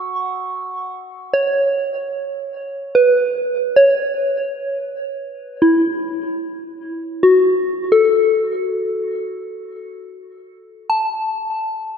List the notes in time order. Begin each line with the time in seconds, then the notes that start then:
Already playing: F#4 F#5 C#6 E6
1.33 C#5
2.95 B4
3.76 C#5
5.62 E4
7.23 F#4
7.92 A4
10.90 A5